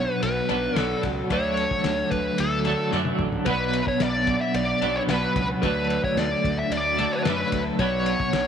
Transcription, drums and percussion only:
0.23 ride
0.49 ride
0.76 snare, ride
1.03 kick, ride
1.30 kick, ride
1.57 ride
1.71 kick
1.84 snare, ride
2.11 kick, ride
2.38 ride
2.65 ride
2.92 snare
3.05 high tom
3.19 mid tom
3.32 floor tom
3.46 kick, ride
3.73 ride
3.87 kick
4.00 snare, ride
4.27 kick, ride
4.54 ride
4.82 ride
5.09 snare, ride
5.36 kick, ride
5.63 kick, ride
5.90 ride
6.04 kick
6.17 snare, ride
6.45 kick, ride
6.72 ride
6.98 ride
7.25 snare, ride
7.52 kick, ride
7.79 kick, ride
8.06 ride
8.20 kick
8.33 snare, ride

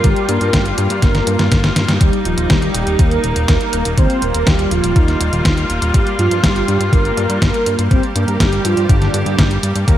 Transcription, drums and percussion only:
0.04 kick, closed hi-hat
0.16 closed hi-hat
0.29 closed hi-hat
0.41 closed hi-hat
0.53 kick, snare, closed hi-hat
0.66 closed hi-hat
0.78 closed hi-hat
0.90 closed hi-hat
1.02 kick, snare, closed hi-hat
1.15 snare, closed hi-hat
1.27 closed hi-hat
1.39 snare, closed hi-hat
1.52 kick, snare, closed hi-hat
1.64 snare, closed hi-hat
1.76 snare, closed hi-hat
1.89 snare, closed hi-hat
2.01 kick, closed hi-hat
2.13 closed hi-hat
2.25 closed hi-hat
2.38 closed hi-hat
2.50 kick, snare, closed hi-hat
2.62 closed hi-hat
2.74 closed hi-hat
2.87 closed hi-hat
2.99 kick, closed hi-hat
3.11 closed hi-hat
3.24 closed hi-hat
3.36 closed hi-hat
3.48 kick, snare, closed hi-hat
3.61 closed hi-hat
3.73 closed hi-hat
3.85 closed hi-hat
3.98 kick, closed hi-hat
4.10 closed hi-hat
4.22 closed hi-hat
4.34 closed hi-hat
4.47 kick, snare, closed hi-hat
4.59 closed hi-hat
4.71 closed hi-hat
4.84 closed hi-hat
4.96 kick, closed hi-hat
5.08 snare, closed hi-hat
5.21 closed hi-hat
5.33 closed hi-hat
5.45 kick, snare, closed hi-hat
5.58 closed hi-hat
5.70 closed hi-hat
5.82 closed hi-hat
5.94 kick, closed hi-hat
6.07 closed hi-hat
6.19 closed hi-hat
6.31 closed hi-hat
6.44 kick, snare, closed hi-hat
6.56 closed hi-hat
6.68 closed hi-hat
6.81 closed hi-hat
6.93 kick, closed hi-hat
7.05 closed hi-hat
7.17 closed hi-hat
7.30 closed hi-hat
7.42 kick, snare, closed hi-hat
7.54 closed hi-hat
7.66 closed hi-hat
7.79 closed hi-hat
7.91 kick, closed hi-hat
8.03 closed hi-hat
8.16 closed hi-hat
8.28 closed hi-hat
8.40 kick, snare, closed hi-hat
8.53 closed hi-hat
8.65 closed hi-hat
8.77 closed hi-hat
8.89 kick, closed hi-hat
9.02 snare, closed hi-hat
9.14 closed hi-hat
9.26 closed hi-hat
9.39 kick, snare, closed hi-hat
9.51 closed hi-hat
9.63 closed hi-hat
9.76 closed hi-hat
9.88 kick, closed hi-hat

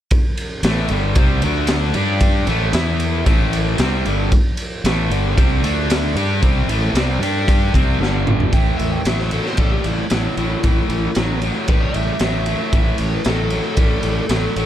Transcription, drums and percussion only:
0.11 kick, ride
0.37 ride
0.63 snare, ride
0.78 snare
0.88 ride
1.15 kick, ride
1.42 ride
1.67 snare, ride
1.94 ride
2.20 kick, ride
2.47 ride
2.73 snare, ride
3.00 ride
3.26 kick, ride
3.53 ride
3.78 snare, ride
4.06 ride
4.32 kick, ride
4.57 ride
4.85 snare, ride
5.11 ride
5.38 kick, ride
5.64 ride
5.90 snare, ride
6.16 ride
6.42 kick, ride
6.69 ride
6.95 snare, ride
7.23 ride
7.48 kick, ride
7.74 kick, ride
8.03 snare
8.27 mid tom
8.40 floor tom
8.53 kick, ride
8.79 ride
9.05 snare, ride
9.19 snare
9.31 ride
9.46 snare
9.57 kick, ride
9.84 ride
10.10 snare, ride
10.37 ride
10.63 kick, ride
10.90 ride
11.15 snare, ride
11.42 ride
11.68 kick, ride
11.94 ride
12.19 snare, ride
12.46 ride
12.73 kick, ride
12.98 ride
13.24 snare, ride
13.50 ride
13.77 kick, ride
14.03 ride
14.29 snare, ride
14.56 ride

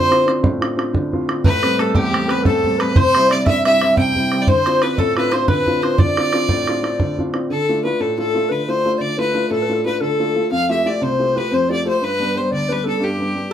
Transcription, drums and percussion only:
0.12 bodhran
0.28 bodhran
0.44 bodhran
0.62 bodhran
0.79 bodhran
0.94 bodhran
1.13 bodhran
1.29 bodhran
1.44 bodhran
1.63 bodhran
1.79 bodhran
1.95 bodhran
2.14 bodhran
2.29 bodhran
2.45 bodhran
2.64 bodhran
2.80 bodhran
2.96 bodhran
3.15 bodhran
3.31 bodhran
3.47 bodhran
3.65 bodhran
3.81 bodhran
3.97 bodhran
4.16 bodhran
4.32 bodhran
4.47 bodhran
4.66 bodhran
4.82 bodhran
4.98 bodhran
5.17 bodhran
5.32 bodhran
5.48 bodhran
5.67 bodhran
5.83 bodhran
5.98 bodhran
6.17 bodhran
6.33 bodhran
6.49 bodhran
6.67 bodhran
6.84 bodhran
7.00 bodhran
7.18 bodhran
7.34 bodhran

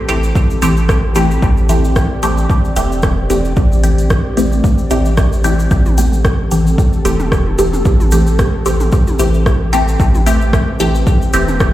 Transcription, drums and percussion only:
0.09 closed hi-hat, shaker
0.23 shaker
0.35 kick, shaker
0.50 shaker
0.62 closed hi-hat, shaker
0.77 shaker
0.89 kick, cross-stick, shaker
1.15 closed hi-hat, shaker
1.31 shaker
1.42 kick, shaker
1.57 shaker
1.69 closed hi-hat, shaker
1.84 shaker
1.96 kick, cross-stick, shaker
2.23 closed hi-hat, shaker
2.37 shaker
2.50 kick, shaker
2.65 shaker
2.76 closed hi-hat, shaker
2.92 shaker
3.02 kick, cross-stick, shaker
3.30 closed hi-hat, shaker
3.45 shaker
3.56 kick, shaker
3.72 shaker
3.84 closed hi-hat, shaker
3.98 closed hi-hat, shaker
4.10 kick, cross-stick, shaker
4.37 closed hi-hat, shaker
4.52 shaker
4.64 kick, shaker
4.78 shaker
4.91 closed hi-hat, shaker
5.05 shaker
5.17 kick, cross-stick, shaker
5.33 shaker
5.44 closed hi-hat, shaker
5.59 shaker
5.71 kick, shaker
5.86 high tom, shaker
5.98 closed hi-hat, shaker
6.13 shaker
6.24 kick, cross-stick, shaker
6.51 closed hi-hat, shaker
6.67 shaker
6.78 kick, shaker
6.93 shaker
7.05 closed hi-hat, shaker
7.20 mid tom, shaker
7.32 kick, cross-stick, shaker
7.47 high tom
7.59 closed hi-hat, shaker
7.73 mid tom, shaker
7.85 kick, shaker
8.00 high tom, shaker
8.11 closed hi-hat, shaker
8.27 shaker
8.39 kick, cross-stick, shaker
8.66 closed hi-hat, shaker
8.80 mid tom, shaker
8.92 kick, shaker
9.07 high tom, shaker
9.19 closed hi-hat, shaker
9.34 shaker
9.46 kick, cross-stick, shaker
9.73 closed hi-hat, shaker
9.88 shaker
10.00 kick, shaker
10.14 high tom, shaker
10.26 closed hi-hat, shaker
10.41 shaker
10.53 kick, cross-stick, shaker
10.80 closed hi-hat, shaker
10.95 shaker
11.07 kick, shaker
11.22 shaker
11.33 closed hi-hat, shaker
11.48 mid tom, shaker
11.60 kick, cross-stick, shaker

